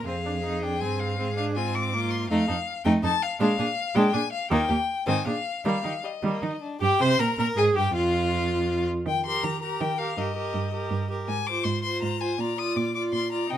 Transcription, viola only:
0.07 0.14 C4 soft
0.26 0.33 D4 soft
0.44 0.64 D#4 soft
0.63 0.81 D4 soft
0.81 1.18 C4 soft
1.19 1.26 C4 medium
1.37 1.58 D4 soft
1.57 1.95 C4 soft
1.94 2.30 A#3 medium
2.30 2.47 A3 medium
2.48 2.56 D#4 soft
2.85 3.02 A3 medium
3.03 3.11 D#4 medium
3.40 3.57 G#3 medium
3.59 3.66 D4 soft
3.95 4.12 G#3 medium
4.13 4.21 D4 soft
4.51 4.68 D#3 medium
4.70 4.78 A#3 soft
5.07 5.25 D#3 medium
5.27 5.34 D4 soft
5.65 5.83 G3 medium
5.84 5.92 D#4 soft
6.23 6.41 G3 medium
6.42 6.50 D#4 soft
6.81 7.02 G4 medium
7.00 7.21 C5 medium
7.19 7.38 A#4 medium
7.39 7.46 A#4 medium
7.57 7.77 G#4 medium
7.76 7.94 G4 medium
7.95 8.86 F4 medium
9.26 9.61 G4 soft
9.62 9.98 G4 soft
9.99 10.17 G4 soft
10.18 10.36 G4 soft
10.36 10.73 G4 soft
10.73 11.09 G4 soft
11.10 11.28 G4 soft
11.47 11.83 F4 soft
11.85 12.20 F4 soft
12.21 12.39 F4 soft
12.39 12.57 F4 soft
12.58 12.94 F4 soft
12.95 13.31 F4 soft
13.31 13.49 F4 soft
13.49 13.58 D#4 soft

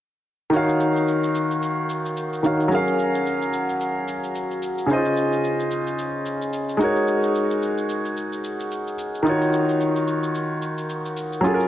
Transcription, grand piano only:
0.50 2.39 D#3 medium
0.50 2.40 D#4 medium
0.50 2.40 F#4 medium
0.55 2.41 C#5 medium
0.55 2.42 F5 medium
2.43 2.71 D#3 medium
2.43 2.71 D#4 medium
2.43 2.72 F#4 medium
2.43 2.72 C#5 soft
2.43 2.72 F5 medium
2.68 4.84 F#3 medium
2.68 4.85 C#4 medium
2.68 4.86 G#4 medium
2.73 4.87 A#4 medium
2.73 4.87 F5 medium
4.86 6.75 C#3 medium
4.86 6.76 C#4 medium
4.86 4.97 D#4 soft
4.91 6.78 C5 medium
4.91 6.78 D#5 medium
4.96 6.80 F4 medium
6.77 8.93 G#3 medium
6.77 8.94 D#4 medium
6.77 8.95 F#4 medium
6.82 8.96 A#4 medium
6.82 8.96 C#5 medium
9.23 11.39 D#3 medium
9.23 11.39 D#4 medium
9.23 11.40 F4 medium
9.28 11.41 F#4 medium
9.28 11.42 C#5 medium
11.41 11.68 F#3 medium
11.41 11.68 C#4 medium
11.41 11.68 F4 medium
11.46 11.68 G#4 medium
11.46 11.53 A4 medium
11.54 11.68 A#4 medium

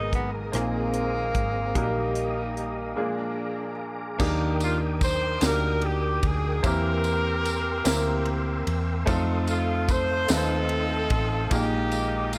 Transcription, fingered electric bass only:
0.00 0.49 G#1 medium
0.53 1.31 A#1 medium
1.35 1.72 G#1 medium
1.75 2.94 A#1 medium
4.20 5.38 D#2 medium
5.42 6.19 D2 medium
6.23 6.61 D2 medium
6.64 7.82 E2 medium
7.85 8.63 D2 medium
8.67 9.04 E2 medium
9.07 10.25 F2 loud
10.30 11.07 D#2 medium
11.11 11.48 A1 medium
11.51 12.38 A#1 loud

